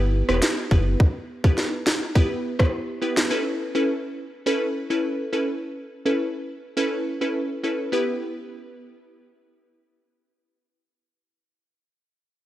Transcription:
Already playing: sub bass G1
0.29 sub bass E1, synth pluck B3 E4 G4 B4, cross-stick
0.42 snare, closed hi-hat
0.71 sub bass F#1, synth pluck B3 E4 G4 B4, kick
1.00 kick
1.44 synth pluck B3 E4 G4 B4, kick
1.58 snare
1.87 snare
2.15 synth pluck B3 E4 G4 B4, kick
2.59 synth pluck B3 E4 G4 B4, kick, cross-stick
3.02 synth pluck B3 E4 G4 B4
3.17 snare
3.30 synth pluck C#4 E4 A4 B4
3.75 synth pluck C#4 E4 A4 B4
4.46 synth pluck C#4 E4 A4 B4
4.90 synth pluck C#4 E4 A4 B4
5.33 synth pluck C#4 E4 A4 B4
6.05 synth pluck C#4 E4 A4 B4
6.77 synth pluck C#4 E4 A4 B4
7.21 synth pluck C#4 E4 A4 B4
7.63 synth pluck C#4 E4 A4 B4
7.92 synth pluck B3 E4 G4 B4

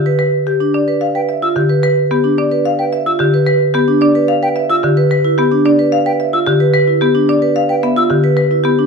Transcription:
Already playing: marimba D3 G4
0.06 vibraphone B4
0.19 marimba B4
0.47 marimba G4
0.61 vibraphone D4
0.74 marimba D4 D5
0.88 vibraphone B4
1.01 marimba F5
1.15 vibraphone B4, flute G5
1.29 marimba E5
1.42 vibraphone F4, flute E6
1.56 marimba D3 G4
1.69 vibraphone B4
1.83 marimba B4
2.11 marimba B3 G4
2.24 vibraphone D4
2.38 marimba D4 D5
2.52 vibraphone B4
2.65 marimba F5
2.79 vibraphone B4, flute G5
2.93 marimba E5
3.06 vibraphone F4, flute E6
3.19 marimba D3 G4
3.34 vibraphone B4
3.47 marimba B4
3.74 marimba B3 G4
3.88 vibraphone D4
4.01 marimba D4 D5
4.15 vibraphone B4
4.28 marimba F5
4.43 vibraphone B4, flute G5
4.56 marimba E5
4.70 vibraphone F4, flute E6
4.83 marimba D3 G4
4.97 vibraphone B4
5.11 marimba B4
5.25 vibraphone E4
5.38 marimba B3 G4
5.52 vibraphone D4
5.65 marimba D4 D5
5.79 vibraphone B4
5.92 marimba F5
6.06 vibraphone B4, flute G5
6.20 marimba E5
6.33 vibraphone F4, flute E6
6.47 marimba D3 G4
6.60 vibraphone B4
6.74 marimba B4
6.87 vibraphone E4
7.01 marimba B3 G4
7.15 vibraphone D4
7.29 marimba D4 D5
7.42 vibraphone B4
7.56 marimba F5
7.69 vibraphone B4, flute G5
7.83 marimba B3 E5
7.96 vibraphone F4, flute E6
8.10 marimba D3 G4
8.24 vibraphone B4
8.37 marimba B4
8.51 vibraphone E4
8.64 marimba B3 G4
8.79 vibraphone D4

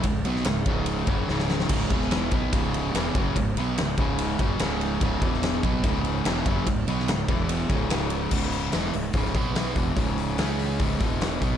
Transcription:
0.03 fingered electric bass C#1, overdriven electric guitar C#2 G#2, kick, ride
0.25 fingered electric bass B1, overdriven electric guitar B2 F#3 B3, ride
0.36 snare
0.44 fingered electric bass C#1, overdriven electric guitar C#2 G#2, snare, ride
0.66 fingered electric bass C#1, overdriven electric guitar C#2 G#2 C#3, kick, ride
0.86 ride
1.07 fingered electric bass F#1, overdriven electric guitar F#2 C#3 F#3, kick, ride
1.28 fingered electric bass C#1, overdriven electric guitar C#2 G#2 C#3, snare
1.39 snare
1.50 snare
1.60 snare
1.69 fingered electric bass C#1, overdriven electric guitar C#2 G#2 C#3, kick, ride, crash
1.90 fingered electric bass E1, overdriven electric guitar E2 B2 E3, kick, ride
2.02 snare
2.11 snare, ride
2.31 fingered electric bass B1, overdriven electric guitar B2 F#3 B3, kick, ride
2.53 fingered electric bass C#1, overdriven electric guitar C#2 G#2 C#3, kick, ride
2.74 ride
2.94 fingered electric bass E1, overdriven electric guitar E2 B2 E3, snare, ride
3.15 fingered electric bass F#1, overdriven electric guitar F#2 C#3 F#3, kick, ride
3.35 fingered electric bass C#1, overdriven electric guitar C#2 G#2, kick, ride
3.56 fingered electric bass B1, overdriven electric guitar B2 F#3 B3, ride
3.78 fingered electric bass C#1, overdriven electric guitar C#2 G#2, snare, ride
3.98 fingered electric bass C#1, overdriven electric guitar C#2 G#2 C#3, kick, ride
4.18 ride
4.39 fingered electric bass F#1, overdriven electric guitar F#2 C#3 F#3, kick, ride
4.59 fingered electric bass C#1, overdriven electric guitar C#2 G#2 C#3, snare, ride
4.81 ride
5.01 fingered electric bass C#1, overdriven electric guitar C#2 G#2 C#3, kick, ride
5.21 fingered electric bass E1, overdriven electric guitar E2 B2 E3, kick, ride
5.34 snare
5.43 snare, ride
5.63 fingered electric bass B1, overdriven electric guitar B2 F#3 B3, kick, ride
5.84 fingered electric bass C#1, overdriven electric guitar C#2 G#2 C#3, kick, ride
6.05 ride
6.25 fingered electric bass E1, overdriven electric guitar E2 B2 E3, snare, ride
6.46 fingered electric bass F#1, overdriven electric guitar F#2 C#3 F#3, kick, ride
6.67 fingered electric bass C#1, overdriven electric guitar C#2 G#2, kick, ride
6.88 fingered electric bass B1, overdriven electric guitar B2 F#3 B3, ride
7.00 snare
7.08 fingered electric bass C#1, overdriven electric guitar C#2 G#2, snare, ride
7.28 fingered electric bass E1, overdriven electric guitar E2 B2 E3, kick, ride
7.49 ride
7.69 fingered electric bass C#1, overdriven electric guitar C#2 G#2 C#3, kick, ride
7.90 snare, ride
8.10 ride
8.31 fingered electric bass C#1, overdriven electric guitar C#2 G#2 C#3, kick, crash
8.52 open hi-hat
8.72 fingered electric bass E1, overdriven electric guitar E2 B2 E3, snare, open hi-hat
8.93 fingered electric bass C#1, overdriven electric guitar C#2 G#2, open hi-hat
9.13 fingered electric bass C#1, overdriven electric guitar C#2 G#2 C#3, kick, open hi-hat
9.25 snare
9.35 fingered electric bass B1, overdriven electric guitar B2 F#3 B3, kick, open hi-hat
9.55 snare, open hi-hat
9.76 fingered electric bass E1, overdriven electric guitar E2 B2 E3, kick, open hi-hat
9.96 fingered electric bass C#1, overdriven electric guitar C#2 G#2 C#3, kick, open hi-hat
10.18 open hi-hat
10.38 fingered electric bass C#2, overdriven electric guitar C#3 G#3 C#4, snare, open hi-hat
10.59 open hi-hat
10.80 fingered electric bass C#1, overdriven electric guitar C#2 G#2 C#3, kick, open hi-hat
11.00 fingered electric bass E1, overdriven electric guitar E2 B2 E3, kick, open hi-hat
11.21 snare, open hi-hat
11.42 fingered electric bass B1, overdriven electric guitar B2 F#3 B3, kick, open hi-hat

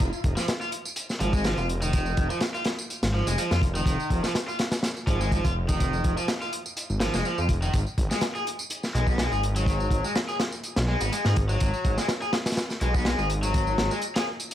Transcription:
0.00 detuned saw bass F1, kick, closed hi-hat
0.13 tambourine
0.24 detuned saw bass F1, kick, closed hi-hat
0.37 overdriven electric guitar F3, snare, tambourine
0.48 snare, closed hi-hat, tambourine
0.61 overdriven electric guitar F4, tambourine
0.72 closed hi-hat
0.85 tambourine
0.96 closed hi-hat, tambourine
1.09 snare, tambourine
1.20 detuned saw bass G#1, overdriven electric guitar F3, closed hi-hat
1.33 overdriven electric guitar G#3, kick, tambourine
1.44 overdriven electric guitar F3, snare, closed hi-hat, tambourine
1.57 detuned saw bass F1, overdriven electric guitar F4, tambourine
1.69 closed hi-hat
1.82 overdriven electric guitar D#3, closed hi-hat, tambourine
1.93 kick, closed hi-hat, tambourine
2.06 tambourine
2.17 detuned saw bass F1, kick, closed hi-hat
2.30 overdriven electric guitar F3, tambourine
2.40 snare, closed hi-hat, tambourine
2.54 overdriven electric guitar F4, tambourine
2.64 snare, closed hi-hat
2.79 tambourine
2.90 closed hi-hat, tambourine
3.03 detuned saw bass G#1, snare, closed hi-hat, tambourine
3.14 overdriven electric guitar F3
3.27 detuned saw bass F1, overdriven electric guitar G#3, closed hi-hat, tambourine
3.38 overdriven electric guitar F3, closed hi-hat, tambourine
3.51 detuned saw bass F2, overdriven electric guitar F4, snare, tambourine
3.62 detuned saw bass F1, kick, closed hi-hat
3.75 overdriven electric guitar D#3, tambourine
3.86 detuned saw bass F1, kick, closed hi-hat, tambourine
4.00 tambourine
4.10 detuned saw bass F1, kick, closed hi-hat
4.24 overdriven electric guitar F3, snare, tambourine
4.35 snare, closed hi-hat, tambourine
4.48 overdriven electric guitar F4, tambourine
4.59 snare, closed hi-hat
4.71 snare, closed hi-hat, tambourine
4.83 snare, closed hi-hat, tambourine
4.97 tambourine
5.07 detuned saw bass G#1, overdriven electric guitar F3, kick, closed hi-hat
5.20 overdriven electric guitar G#3, tambourine
5.32 overdriven electric guitar F3, kick, closed hi-hat, tambourine
5.44 detuned saw bass F1, overdriven electric guitar F4, kick, closed hi-hat, tambourine
5.69 overdriven electric guitar D#3, kick, closed hi-hat, tambourine
5.80 kick, closed hi-hat, tambourine
5.93 tambourine
6.04 detuned saw bass F1, kick, closed hi-hat
6.17 overdriven electric guitar F3, tambourine
6.28 snare, closed hi-hat, tambourine
6.42 overdriven electric guitar F4, tambourine
6.53 closed hi-hat
6.66 tambourine
6.77 closed hi-hat, tambourine
6.90 detuned saw bass G#1, tambourine
7.00 overdriven electric guitar F3, snare, closed hi-hat
7.14 detuned saw bass F1, overdriven electric guitar G#3, snare, tambourine
7.25 overdriven electric guitar F3, tambourine
7.38 detuned saw bass F2, overdriven electric guitar F4, tambourine
7.49 detuned saw bass F1, kick, closed hi-hat
7.62 overdriven electric guitar D#3, tambourine
7.73 detuned saw bass G#1, kick, closed hi-hat, tambourine
7.86 tambourine
7.98 detuned saw bass G#1, kick, closed hi-hat
8.11 overdriven electric guitar G#3, snare, tambourine
8.21 snare, closed hi-hat, tambourine
8.35 overdriven electric guitar G#4, tambourine
8.47 closed hi-hat
8.59 tambourine
8.70 closed hi-hat, tambourine
8.83 snare, tambourine
8.95 detuned saw bass B1, overdriven electric guitar G#3, closed hi-hat
9.07 overdriven electric guitar B3, kick, tambourine
9.18 overdriven electric guitar G#3, snare, closed hi-hat, tambourine
9.32 detuned saw bass G#1, overdriven electric guitar G#4, tambourine
9.43 closed hi-hat
9.56 overdriven electric guitar F#3, closed hi-hat, tambourine
9.66 kick, closed hi-hat, tambourine
9.80 tambourine
9.90 detuned saw bass G#1, kick, closed hi-hat
10.04 overdriven electric guitar G#3, tambourine
10.15 snare, closed hi-hat, tambourine
10.28 overdriven electric guitar G#4, tambourine
10.40 snare, closed hi-hat
10.52 tambourine
10.63 closed hi-hat, tambourine
10.76 detuned saw bass B1, snare, closed hi-hat, tambourine
10.88 overdriven electric guitar G#3
11.01 detuned saw bass G#1, overdriven electric guitar B3, closed hi-hat, tambourine
11.12 overdriven electric guitar G#3, closed hi-hat, tambourine
11.25 detuned saw bass G#2, overdriven electric guitar G#4, snare, tambourine
11.36 detuned saw bass G#1, kick, closed hi-hat
11.49 overdriven electric guitar F#3, tambourine
11.60 detuned saw bass G#1, kick, closed hi-hat, tambourine
11.73 tambourine
11.85 detuned saw bass G#1, kick, closed hi-hat
11.98 overdriven electric guitar G#3, snare, tambourine
12.08 snare, closed hi-hat, tambourine
12.22 overdriven electric guitar G#4, tambourine
12.33 snare, closed hi-hat
12.46 snare, closed hi-hat, tambourine
12.52 snare, closed hi-hat
12.57 snare, closed hi-hat, tambourine
12.70 snare, tambourine
12.81 detuned saw bass B1, overdriven electric guitar G#3, closed hi-hat
12.94 overdriven electric guitar B3, kick, tambourine
13.05 overdriven electric guitar G#3, snare, closed hi-hat, tambourine
13.18 detuned saw bass G#1, overdriven electric guitar G#4, tambourine
13.30 closed hi-hat
13.43 overdriven electric guitar F#3, closed hi-hat, tambourine
13.54 kick, closed hi-hat, tambourine
13.67 tambourine
13.78 detuned saw bass G#1, snare, closed hi-hat
13.91 overdriven electric guitar G#3, tambourine
14.02 closed hi-hat, tambourine
14.15 overdriven electric guitar G#4, snare, closed hi-hat, tambourine
14.40 closed hi-hat, tambourine
14.51 tambourine

